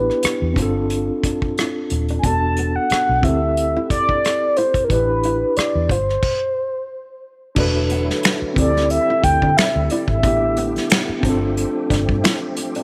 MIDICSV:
0, 0, Header, 1, 9, 480
1, 0, Start_track
1, 0, Tempo, 666667
1, 1606, Time_signature, 4, 2, 24, 8
1, 9238, End_track
2, 0, Start_track
2, 0, Title_t, "Soft synth lead"
2, 0, Program_c, 0, 80
2, 0, Note_on_c, 0, 71, 81
2, 408, Note_off_c, 0, 71, 0
2, 1575, Note_on_c, 0, 80, 74
2, 1619, Note_on_c, 0, 81, 110
2, 1629, Note_off_c, 0, 80, 0
2, 1984, Note_on_c, 0, 78, 102
2, 1995, Note_off_c, 0, 81, 0
2, 2334, Note_on_c, 0, 76, 107
2, 2345, Note_off_c, 0, 78, 0
2, 2810, Note_off_c, 0, 76, 0
2, 2814, Note_on_c, 0, 74, 100
2, 3290, Note_on_c, 0, 72, 86
2, 3300, Note_off_c, 0, 74, 0
2, 3481, Note_off_c, 0, 72, 0
2, 3489, Note_on_c, 0, 70, 61
2, 3528, Note_on_c, 0, 71, 93
2, 3539, Note_off_c, 0, 70, 0
2, 4010, Note_on_c, 0, 74, 89
2, 4021, Note_off_c, 0, 71, 0
2, 4254, Note_on_c, 0, 72, 84
2, 4265, Note_off_c, 0, 74, 0
2, 5210, Note_off_c, 0, 72, 0
2, 6175, Note_on_c, 0, 74, 93
2, 6394, Note_off_c, 0, 74, 0
2, 6414, Note_on_c, 0, 76, 103
2, 6651, Note_on_c, 0, 79, 111
2, 6662, Note_off_c, 0, 76, 0
2, 6890, Note_on_c, 0, 76, 97
2, 6901, Note_off_c, 0, 79, 0
2, 7136, Note_on_c, 0, 74, 85
2, 7147, Note_off_c, 0, 76, 0
2, 7255, Note_off_c, 0, 74, 0
2, 7260, Note_on_c, 0, 76, 94
2, 7948, Note_off_c, 0, 76, 0
2, 9238, End_track
3, 0, Start_track
3, 0, Title_t, "Tine electric piano"
3, 0, Program_c, 1, 4
3, 0, Control_c, 1, 64, 127
3, 0, Note_on_c, 1, 59, 60
3, 0, Note_on_c, 1, 62, 57
3, 0, Note_on_c, 1, 64, 57
3, 0, Note_on_c, 1, 67, 67
3, 382, Note_on_c, 1, 60, 69
3, 397, Note_off_c, 1, 62, 0
3, 401, Note_off_c, 1, 59, 0
3, 405, Note_on_c, 1, 62, 65
3, 412, Note_off_c, 1, 64, 0
3, 414, Control_c, 1, 64, 0
3, 418, Note_off_c, 1, 67, 0
3, 427, Note_on_c, 1, 65, 69
3, 448, Note_on_c, 1, 69, 81
3, 543, Control_c, 1, 64, 127
3, 1569, Note_off_c, 1, 60, 0
3, 1581, Note_off_c, 1, 62, 0
3, 1592, Note_off_c, 1, 65, 0
3, 1598, Note_on_c, 1, 59, 62
3, 1603, Note_off_c, 1, 69, 0
3, 1610, Note_on_c, 1, 62, 58
3, 1614, Control_c, 1, 64, 0
3, 1622, Note_on_c, 1, 66, 56
3, 1633, Note_on_c, 1, 69, 64
3, 1734, Control_c, 1, 64, 127
3, 2302, Note_on_c, 1, 60, 59
3, 2322, Note_off_c, 1, 59, 0
3, 2324, Note_on_c, 1, 64, 55
3, 2328, Note_off_c, 1, 62, 0
3, 2334, Note_off_c, 1, 66, 0
3, 2334, Control_c, 1, 64, 0
3, 2339, Note_off_c, 1, 69, 0
3, 2346, Note_on_c, 1, 67, 57
3, 2368, Note_on_c, 1, 69, 67
3, 2449, Control_c, 1, 64, 127
3, 3490, Note_off_c, 1, 60, 0
3, 3501, Note_off_c, 1, 64, 0
3, 3512, Note_off_c, 1, 67, 0
3, 3519, Note_on_c, 1, 62, 58
3, 3523, Note_off_c, 1, 69, 0
3, 3529, Note_on_c, 1, 64, 54
3, 3534, Control_c, 1, 64, 0
3, 3541, Note_on_c, 1, 67, 53
3, 3552, Note_on_c, 1, 71, 66
3, 3647, Control_c, 1, 64, 127
3, 4242, Note_off_c, 1, 62, 0
3, 4247, Note_off_c, 1, 64, 0
3, 4253, Note_off_c, 1, 67, 0
3, 4253, Control_c, 1, 64, 0
3, 4259, Note_off_c, 1, 71, 0
3, 5437, Note_on_c, 1, 62, 77
3, 5447, Note_on_c, 1, 66, 67
3, 5458, Note_on_c, 1, 69, 69
3, 5470, Note_on_c, 1, 71, 88
3, 5595, Control_c, 1, 64, 127
3, 6143, Note_on_c, 1, 60, 67
3, 6161, Note_off_c, 1, 62, 0
3, 6165, Note_on_c, 1, 64, 59
3, 6166, Note_off_c, 1, 66, 0
3, 6172, Note_off_c, 1, 69, 0
3, 6174, Control_c, 1, 64, 0
3, 6178, Note_off_c, 1, 71, 0
3, 6187, Note_on_c, 1, 67, 60
3, 6209, Note_on_c, 1, 69, 75
3, 6316, Control_c, 1, 64, 127
3, 7330, Note_off_c, 1, 60, 0
3, 7341, Note_off_c, 1, 64, 0
3, 7352, Note_off_c, 1, 67, 0
3, 7361, Note_on_c, 1, 59, 63
3, 7364, Note_off_c, 1, 69, 0
3, 7372, Note_on_c, 1, 62, 59
3, 7373, Control_c, 1, 64, 0
3, 7383, Note_on_c, 1, 64, 60
3, 7394, Note_on_c, 1, 67, 72
3, 7492, Control_c, 1, 64, 127
3, 8066, Note_on_c, 1, 60, 77
3, 8078, Note_off_c, 1, 62, 0
3, 8083, Note_off_c, 1, 59, 0
3, 8087, Note_on_c, 1, 62, 74
3, 8094, Note_off_c, 1, 64, 0
3, 8096, Control_c, 1, 64, 0
3, 8100, Note_off_c, 1, 67, 0
3, 8109, Note_on_c, 1, 65, 72
3, 8132, Note_on_c, 1, 69, 86
3, 8241, Control_c, 1, 64, 127
3, 9238, Note_off_c, 1, 60, 0
3, 9238, Note_off_c, 1, 62, 0
3, 9238, Note_off_c, 1, 65, 0
3, 9238, Note_off_c, 1, 69, 0
3, 9238, End_track
4, 0, Start_track
4, 0, Title_t, "Nylon-string guitar"
4, 0, Program_c, 2, 24
4, 420, Note_on_c, 2, 60, 69
4, 499, Note_off_c, 2, 60, 0
4, 903, Note_on_c, 2, 62, 68
4, 981, Note_off_c, 2, 62, 0
4, 1147, Note_on_c, 2, 64, 79
4, 1224, Note_off_c, 2, 64, 0
4, 1514, Note_on_c, 2, 62, 63
4, 1580, Note_off_c, 2, 62, 0
4, 1624, Note_on_c, 2, 62, 67
4, 1702, Note_off_c, 2, 62, 0
4, 1863, Note_on_c, 2, 59, 64
4, 1941, Note_off_c, 2, 59, 0
4, 2342, Note_on_c, 2, 60, 70
4, 2421, Note_off_c, 2, 60, 0
4, 2711, Note_on_c, 2, 64, 71
4, 2778, Note_off_c, 2, 64, 0
4, 2945, Note_on_c, 2, 62, 67
4, 3014, Note_off_c, 2, 62, 0
4, 3299, Note_on_c, 2, 64, 73
4, 3379, Note_off_c, 2, 64, 0
4, 3541, Note_on_c, 2, 62, 72
4, 3620, Note_off_c, 2, 62, 0
4, 3781, Note_on_c, 2, 64, 70
4, 3860, Note_off_c, 2, 64, 0
4, 4256, Note_on_c, 2, 65, 65
4, 4337, Note_off_c, 2, 65, 0
4, 5459, Note_on_c, 2, 62, 77
4, 5539, Note_off_c, 2, 62, 0
4, 5696, Note_on_c, 2, 59, 67
4, 5777, Note_off_c, 2, 59, 0
4, 6180, Note_on_c, 2, 60, 73
4, 6260, Note_off_c, 2, 60, 0
4, 6552, Note_on_c, 2, 64, 76
4, 6619, Note_off_c, 2, 64, 0
4, 6790, Note_on_c, 2, 62, 72
4, 6857, Note_off_c, 2, 62, 0
4, 7144, Note_on_c, 2, 64, 87
4, 7222, Note_off_c, 2, 64, 0
4, 7378, Note_on_c, 2, 62, 78
4, 7458, Note_off_c, 2, 62, 0
4, 7617, Note_on_c, 2, 59, 78
4, 7698, Note_off_c, 2, 59, 0
4, 8098, Note_on_c, 2, 60, 74
4, 8178, Note_off_c, 2, 60, 0
4, 8577, Note_on_c, 2, 62, 81
4, 8657, Note_off_c, 2, 62, 0
4, 8811, Note_on_c, 2, 64, 88
4, 8894, Note_off_c, 2, 64, 0
4, 9188, Note_on_c, 2, 62, 73
4, 9238, Note_off_c, 2, 62, 0
4, 9238, End_track
5, 0, Start_track
5, 0, Title_t, "Tonewheel organ"
5, 0, Program_c, 3, 16
5, 5442, Note_on_c, 3, 57, 56
5, 5444, Note_on_c, 3, 54, 60
5, 5445, Note_on_c, 3, 50, 65
5, 5446, Note_on_c, 3, 64, 73
5, 6156, Note_off_c, 3, 57, 0
5, 6158, Note_off_c, 3, 54, 0
5, 6160, Note_on_c, 3, 55, 67
5, 6161, Note_on_c, 3, 60, 65
5, 7346, Note_off_c, 3, 64, 0
5, 7351, Note_off_c, 3, 55, 0
5, 7351, Note_off_c, 3, 60, 0
5, 7366, Note_on_c, 3, 57, 61
5, 7366, Note_on_c, 3, 59, 60
5, 7367, Note_on_c, 3, 67, 74
5, 8059, Note_off_c, 3, 50, 0
5, 8079, Note_off_c, 3, 59, 0
5, 8079, Note_off_c, 3, 67, 0
5, 8089, Note_on_c, 3, 67, 80
5, 8090, Note_on_c, 3, 60, 65
5, 8091, Note_on_c, 3, 53, 68
5, 9238, Note_off_c, 3, 53, 0
5, 9238, Note_off_c, 3, 57, 0
5, 9238, Note_off_c, 3, 60, 0
5, 9238, Note_off_c, 3, 67, 0
5, 9238, End_track
6, 0, Start_track
6, 0, Title_t, "Fingered electric bass"
6, 0, Program_c, 4, 33
6, 302, Note_on_c, 4, 40, 73
6, 386, Note_off_c, 4, 40, 0
6, 408, Note_on_c, 4, 31, 84
6, 786, Note_off_c, 4, 31, 0
6, 1377, Note_on_c, 4, 27, 84
6, 1562, Note_off_c, 4, 27, 0
6, 1614, Note_on_c, 4, 28, 93
6, 1989, Note_off_c, 4, 28, 0
6, 2226, Note_on_c, 4, 35, 85
6, 2309, Note_off_c, 4, 35, 0
6, 2331, Note_on_c, 4, 38, 86
6, 2707, Note_off_c, 4, 38, 0
6, 3532, Note_on_c, 4, 33, 93
6, 3908, Note_off_c, 4, 33, 0
6, 4142, Note_on_c, 4, 40, 78
6, 4227, Note_off_c, 4, 40, 0
6, 4249, Note_on_c, 4, 31, 81
6, 4437, Note_off_c, 4, 31, 0
6, 5451, Note_on_c, 4, 28, 101
6, 5828, Note_off_c, 4, 28, 0
6, 6171, Note_on_c, 4, 38, 91
6, 6460, Note_off_c, 4, 38, 0
6, 6654, Note_on_c, 4, 38, 88
6, 6752, Note_off_c, 4, 38, 0
6, 6788, Note_on_c, 4, 50, 86
6, 6870, Note_off_c, 4, 50, 0
6, 7025, Note_on_c, 4, 38, 94
6, 7108, Note_off_c, 4, 38, 0
6, 7260, Note_on_c, 4, 32, 79
6, 7372, Note_off_c, 4, 32, 0
6, 7372, Note_on_c, 4, 33, 114
6, 7748, Note_off_c, 4, 33, 0
6, 8091, Note_on_c, 4, 31, 100
6, 8380, Note_off_c, 4, 31, 0
6, 8575, Note_on_c, 4, 31, 91
6, 8673, Note_off_c, 4, 31, 0
6, 8708, Note_on_c, 4, 43, 93
6, 8790, Note_off_c, 4, 43, 0
6, 9238, End_track
7, 0, Start_track
7, 0, Title_t, "Muted fingered electric bass strokes"
7, 175, Note_on_c, 9, 29, 42
7, 247, Note_off_c, 9, 29, 0
7, 2095, Note_on_c, 9, 29, 44
7, 2167, Note_off_c, 9, 29, 0
7, 4014, Note_on_c, 9, 29, 41
7, 4086, Note_off_c, 9, 29, 0
7, 6062, Note_on_c, 9, 29, 48
7, 6134, Note_off_c, 9, 29, 0
7, 6895, Note_on_c, 9, 29, 47
7, 6967, Note_off_c, 9, 29, 0
7, 7985, Note_on_c, 9, 29, 48
7, 8057, Note_off_c, 9, 29, 0
7, 9238, End_track
8, 0, Start_track
8, 0, Title_t, "Muted nylon-string guitar strokes"
8, 1385, Note_on_c, 9, 29, 42
8, 1457, Note_off_c, 9, 29, 0
8, 2816, Note_on_c, 9, 29, 38
8, 2888, Note_off_c, 9, 29, 0
8, 6659, Note_on_c, 9, 29, 41
8, 6731, Note_off_c, 9, 29, 0
8, 9056, Note_on_c, 9, 29, 48
8, 9128, Note_off_c, 9, 29, 0
8, 9238, End_track
9, 0, Start_track
9, 0, Title_t, "Drums"
9, 71, Note_on_c, 9, 37, 30
9, 143, Note_off_c, 9, 37, 0
9, 163, Note_on_c, 9, 42, 77
9, 180, Note_on_c, 9, 37, 101
9, 235, Note_off_c, 9, 42, 0
9, 252, Note_off_c, 9, 37, 0
9, 404, Note_on_c, 9, 36, 97
9, 412, Note_on_c, 9, 42, 73
9, 476, Note_off_c, 9, 36, 0
9, 484, Note_off_c, 9, 42, 0
9, 647, Note_on_c, 9, 42, 71
9, 719, Note_off_c, 9, 42, 0
9, 889, Note_on_c, 9, 36, 85
9, 890, Note_on_c, 9, 42, 65
9, 901, Note_on_c, 9, 37, 29
9, 961, Note_off_c, 9, 36, 0
9, 962, Note_off_c, 9, 42, 0
9, 973, Note_off_c, 9, 37, 0
9, 1022, Note_on_c, 9, 36, 83
9, 1094, Note_off_c, 9, 36, 0
9, 1135, Note_on_c, 9, 42, 72
9, 1144, Note_on_c, 9, 37, 92
9, 1207, Note_off_c, 9, 42, 0
9, 1216, Note_off_c, 9, 37, 0
9, 1368, Note_on_c, 9, 42, 67
9, 1440, Note_off_c, 9, 42, 0
9, 1501, Note_on_c, 9, 42, 51
9, 1573, Note_off_c, 9, 42, 0
9, 1609, Note_on_c, 9, 36, 93
9, 1610, Note_on_c, 9, 42, 72
9, 1681, Note_off_c, 9, 36, 0
9, 1682, Note_off_c, 9, 42, 0
9, 1848, Note_on_c, 9, 42, 63
9, 1920, Note_off_c, 9, 42, 0
9, 2087, Note_on_c, 9, 42, 74
9, 2104, Note_on_c, 9, 37, 108
9, 2159, Note_off_c, 9, 42, 0
9, 2176, Note_off_c, 9, 37, 0
9, 2326, Note_on_c, 9, 36, 97
9, 2337, Note_on_c, 9, 42, 71
9, 2398, Note_off_c, 9, 36, 0
9, 2409, Note_off_c, 9, 42, 0
9, 2571, Note_on_c, 9, 42, 70
9, 2643, Note_off_c, 9, 42, 0
9, 2810, Note_on_c, 9, 36, 84
9, 2811, Note_on_c, 9, 42, 65
9, 2822, Note_on_c, 9, 37, 30
9, 2882, Note_off_c, 9, 36, 0
9, 2883, Note_off_c, 9, 42, 0
9, 2894, Note_off_c, 9, 37, 0
9, 2943, Note_on_c, 9, 36, 76
9, 3015, Note_off_c, 9, 36, 0
9, 3057, Note_on_c, 9, 42, 69
9, 3066, Note_on_c, 9, 37, 90
9, 3129, Note_off_c, 9, 42, 0
9, 3138, Note_off_c, 9, 37, 0
9, 3287, Note_on_c, 9, 42, 65
9, 3359, Note_off_c, 9, 42, 0
9, 3415, Note_on_c, 9, 36, 75
9, 3418, Note_on_c, 9, 42, 51
9, 3487, Note_off_c, 9, 36, 0
9, 3490, Note_off_c, 9, 42, 0
9, 3527, Note_on_c, 9, 36, 98
9, 3529, Note_on_c, 9, 42, 71
9, 3599, Note_off_c, 9, 36, 0
9, 3601, Note_off_c, 9, 42, 0
9, 3768, Note_on_c, 9, 42, 59
9, 3840, Note_off_c, 9, 42, 0
9, 4007, Note_on_c, 9, 42, 72
9, 4023, Note_on_c, 9, 37, 107
9, 4079, Note_off_c, 9, 42, 0
9, 4095, Note_off_c, 9, 37, 0
9, 4244, Note_on_c, 9, 36, 97
9, 4255, Note_on_c, 9, 42, 75
9, 4316, Note_off_c, 9, 36, 0
9, 4327, Note_off_c, 9, 42, 0
9, 4388, Note_on_c, 9, 37, 27
9, 4460, Note_off_c, 9, 37, 0
9, 4483, Note_on_c, 9, 36, 99
9, 4483, Note_on_c, 9, 49, 82
9, 4555, Note_off_c, 9, 36, 0
9, 4555, Note_off_c, 9, 49, 0
9, 5444, Note_on_c, 9, 49, 94
9, 5446, Note_on_c, 9, 36, 99
9, 5516, Note_off_c, 9, 49, 0
9, 5518, Note_off_c, 9, 36, 0
9, 5686, Note_on_c, 9, 42, 66
9, 5758, Note_off_c, 9, 42, 0
9, 5831, Note_on_c, 9, 38, 33
9, 5903, Note_off_c, 9, 38, 0
9, 5926, Note_on_c, 9, 42, 83
9, 5941, Note_on_c, 9, 26, 88
9, 5943, Note_on_c, 9, 38, 112
9, 5998, Note_off_c, 9, 42, 0
9, 6013, Note_off_c, 9, 26, 0
9, 6015, Note_off_c, 9, 38, 0
9, 6166, Note_on_c, 9, 36, 113
9, 6176, Note_on_c, 9, 42, 81
9, 6238, Note_off_c, 9, 36, 0
9, 6248, Note_off_c, 9, 42, 0
9, 6309, Note_on_c, 9, 38, 31
9, 6381, Note_off_c, 9, 38, 0
9, 6408, Note_on_c, 9, 42, 82
9, 6480, Note_off_c, 9, 42, 0
9, 6650, Note_on_c, 9, 36, 92
9, 6651, Note_on_c, 9, 42, 71
9, 6722, Note_off_c, 9, 36, 0
9, 6723, Note_off_c, 9, 42, 0
9, 6783, Note_on_c, 9, 36, 82
9, 6855, Note_off_c, 9, 36, 0
9, 6895, Note_on_c, 9, 42, 82
9, 6902, Note_on_c, 9, 26, 77
9, 6904, Note_on_c, 9, 38, 105
9, 6967, Note_off_c, 9, 42, 0
9, 6974, Note_off_c, 9, 26, 0
9, 6976, Note_off_c, 9, 38, 0
9, 7127, Note_on_c, 9, 42, 77
9, 7199, Note_off_c, 9, 42, 0
9, 7256, Note_on_c, 9, 36, 83
9, 7328, Note_off_c, 9, 36, 0
9, 7368, Note_on_c, 9, 36, 108
9, 7369, Note_on_c, 9, 42, 78
9, 7440, Note_off_c, 9, 36, 0
9, 7441, Note_off_c, 9, 42, 0
9, 7608, Note_on_c, 9, 42, 68
9, 7680, Note_off_c, 9, 42, 0
9, 7748, Note_on_c, 9, 42, 42
9, 7753, Note_on_c, 9, 38, 32
9, 7820, Note_off_c, 9, 42, 0
9, 7825, Note_off_c, 9, 38, 0
9, 7846, Note_on_c, 9, 42, 89
9, 7861, Note_on_c, 9, 26, 91
9, 7862, Note_on_c, 9, 38, 115
9, 7918, Note_off_c, 9, 42, 0
9, 7933, Note_off_c, 9, 26, 0
9, 7934, Note_off_c, 9, 38, 0
9, 8087, Note_on_c, 9, 36, 108
9, 8097, Note_on_c, 9, 42, 84
9, 8159, Note_off_c, 9, 36, 0
9, 8169, Note_off_c, 9, 42, 0
9, 8332, Note_on_c, 9, 42, 81
9, 8404, Note_off_c, 9, 42, 0
9, 8570, Note_on_c, 9, 36, 89
9, 8573, Note_on_c, 9, 42, 73
9, 8583, Note_on_c, 9, 38, 34
9, 8642, Note_off_c, 9, 36, 0
9, 8645, Note_off_c, 9, 42, 0
9, 8655, Note_off_c, 9, 38, 0
9, 8703, Note_on_c, 9, 36, 88
9, 8775, Note_off_c, 9, 36, 0
9, 8814, Note_on_c, 9, 42, 80
9, 8821, Note_on_c, 9, 26, 79
9, 8823, Note_on_c, 9, 38, 99
9, 8886, Note_off_c, 9, 42, 0
9, 8893, Note_off_c, 9, 26, 0
9, 8895, Note_off_c, 9, 38, 0
9, 9047, Note_on_c, 9, 42, 79
9, 9119, Note_off_c, 9, 42, 0
9, 9179, Note_on_c, 9, 42, 57
9, 9238, Note_off_c, 9, 42, 0
9, 9238, End_track
0, 0, End_of_file